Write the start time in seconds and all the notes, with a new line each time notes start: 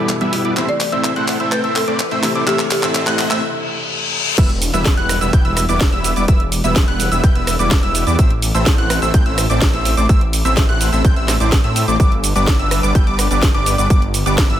Already playing: B2 E3 G3 E4 A4, riser
0.09 clap, closed hi-hat
0.21 G3 B3 E4 B4 E5 E6, closed hi-hat
0.32 B2 E3 G3 E4, open hi-hat
0.45 G3 B3 E4 B4 D5 D6, closed hi-hat
0.55 C3 E3 A3 C4 E4 C5 E5 E6, clap, closed hi-hat
0.69 D5, closed hi-hat
0.80 clap, open hi-hat
0.92 A3 C4 E4 C5 E5 E6, closed hi-hat
1.04 clap, closed hi-hat
1.16 A3 C4 E4 C5 F#5 F#6, closed hi-hat
1.28 clap, open hi-hat
1.40 A3 C4 E4 C5 E5 E6, closed hi-hat
1.52 A3 C4 E4 B4 C5 G5 G6, clap, closed hi-hat
1.64 A3 C4 E4 C5 E5 E6, closed hi-hat
1.76 A4, clap, open hi-hat
1.88 A3 C4 E4 C5 D5 D6, closed hi-hat
2.00 clap, closed hi-hat
2.11 A3 C4 E4 C5 E5 E6, closed hi-hat
2.23 C3 E3 A3 E4, clap, open hi-hat
2.35 A3 C4 E4 C5 D5 D6, closed hi-hat
2.46 C3 E3 A3 C4 E4 G4 C5 E5 E6, clap, closed hi-hat
2.59 clap, closed hi-hat
2.71 G4, clap, open hi-hat
2.83 A3 C4 E4 C5 E5 E6, clap, closed hi-hat
2.95 clap, closed hi-hat
3.07 A3 C4 E4 C5 F#5 F#6, clap, closed hi-hat
3.19 clap, open hi-hat
3.31 A3 C4 E4 C5 E5 E6, clap, closed hi-hat
3.43 reverse cymbal
4.38 E1 G3 B3 E4 B4 E5 E6, kick, closed hi-hat, crash, impact, shaker
4.50 closed hi-hat
4.62 open hi-hat, shaker
4.73 E1 G3 B3 E4 B4 E5 E6, closed hi-hat, shaker
4.86 kick, snare, closed hi-hat, shaker
4.97 E1 G3 B3 E4 B4 F#5 F#6, closed hi-hat
5.09 cross-stick, open hi-hat, shaker
5.21 E1 G3 B3 E4 B4 E5 E6, closed hi-hat, shaker
5.33 E1 G3 B3 E4 B4 G6, kick, closed hi-hat, shaker
5.45 E1 G3 B3 E4 B4 E5 E6, closed hi-hat
5.57 cross-stick, open hi-hat, shaker
5.69 E1 G3 B3 E4 B4 D5 D6, closed hi-hat, shaker
5.81 kick, snare, closed hi-hat, shaker
5.92 E1 G3 B3 E4 B4 E5 E6, closed hi-hat
6.04 open hi-hat, shaker
6.16 E1 G3 B3 E4 B4 D5 D6, closed hi-hat, shaker
6.28 E1 E6, kick, closed hi-hat, shaker
6.40 closed hi-hat
6.52 open hi-hat, shaker
6.64 E1 G3 B3 E4 B4 E5 E6, closed hi-hat, shaker
6.76 kick, snare, closed hi-hat, shaker
6.88 E1 G3 B3 E4 B4 F#5 F#6, closed hi-hat
7.00 open hi-hat, shaker
7.12 E1 G3 B3 E4 B4 E5 E6, closed hi-hat, shaker
7.23 E1 G3 B3 E4 B4 G6, kick, closed hi-hat, shaker
7.35 E1 G3 B3 E4 B4 E5 E6, closed hi-hat
7.47 cross-stick, open hi-hat, shaker
7.59 E1 G3 B3 E4 B4 D5 D6, closed hi-hat, shaker
7.71 kick, snare, closed hi-hat, shaker
7.83 E1 G3 B3 E4 B4 E5 E6, closed hi-hat
7.95 open hi-hat, shaker
8.07 E2 G3 B3 E4 B4 D5 D6, closed hi-hat, shaker
8.19 A1 A3 C4 E4 C5 E5 E6, kick, closed hi-hat, shaker
8.31 closed hi-hat
8.42 open hi-hat, shaker
8.55 A1 A3 C4 E4 C5 E5 E6, closed hi-hat, shaker
8.66 kick, snare, closed hi-hat, shaker
8.78 A1 A3 C4 E4 C5 F#5 F#6, closed hi-hat
8.90 cross-stick, open hi-hat, shaker
9.02 A1 A3 C4 E4 C5 E5 E6, closed hi-hat, shaker
9.14 A1 A3 G6, kick, closed hi-hat, shaker
9.26 A1 A3 C4 E4 C5 E5 E6, closed hi-hat
9.38 cross-stick, open hi-hat, shaker
9.50 A1 A3 C4 E4 C5 D5 D6, closed hi-hat, shaker
9.62 kick, snare, closed hi-hat, shaker
9.73 A1 A3 C4 E4 C5 E5 E6, closed hi-hat
9.85 open hi-hat, shaker
9.97 A1 A3 C4 E4 C5 D5 D6, closed hi-hat, shaker
10.09 A1 E6, kick, closed hi-hat, shaker
10.21 closed hi-hat
10.33 open hi-hat, shaker
10.45 A1 A3 C4 E4 C5 E5 E6, closed hi-hat, shaker
10.57 kick, snare, closed hi-hat, shaker
10.69 A1 A3 C4 E4 C5 F#5 F#6, closed hi-hat
10.81 open hi-hat, shaker
10.92 A1 A3 C4 E4 C5 E5 E6, closed hi-hat, shaker
11.04 A1 C4 E4 C5 G5 G6, kick, closed hi-hat, shaker
11.16 A1 A3 C4 E4 C5 E5 E6, closed hi-hat
11.28 cross-stick, snare, open hi-hat, shaker
11.40 A1 A3 C4 E4 C5 D5 D6, closed hi-hat, shaker
11.52 kick, snare, closed hi-hat, shaker
11.64 A2 A3 C4 E4 C5 E5 E6, closed hi-hat
11.76 open hi-hat, shaker
11.88 A1 A3 C4 E4 C5 D5 D6, closed hi-hat, shaker
12.00 G1 G3 B3 D4 B4 D6, kick, closed hi-hat, shaker
12.12 closed hi-hat
12.24 open hi-hat, shaker
12.35 G1 G3 B3 D4 B4 D5 D6, shaker
12.47 kick, snare, closed hi-hat, shaker
12.59 G1 G3 B3 D4 B4 E5 E6, closed hi-hat
12.71 cross-stick, open hi-hat, shaker
12.83 G1 G3 B3 D4 B4 D5 D6, closed hi-hat, shaker
12.95 G1 G3 B3 D4 B4 G5 G6, kick, closed hi-hat, shaker
13.07 G1 G3 B3 D4 B4 D5 D6, closed hi-hat
13.19 cross-stick, open hi-hat, shaker
13.31 G1 G3 B3 D4 B4 D5 D6, shaker
13.43 kick, snare, closed hi-hat, shaker
13.54 G1 G3 B3 D4 B4 D5 D6, closed hi-hat
13.66 open hi-hat, shaker
13.78 G1 G3 B3 D4 B4 D5 D6, closed hi-hat, shaker
13.90 G1 G3 B3 D4 B4 D5 D6, kick, closed hi-hat, shaker
14.02 closed hi-hat
14.14 open hi-hat, shaker
14.26 G1 G3 B3 D4 B4 D5 D6, closed hi-hat, shaker
14.38 kick, snare, closed hi-hat, shaker
14.50 G1 G3 B3 D4 B4 E5 E6, closed hi-hat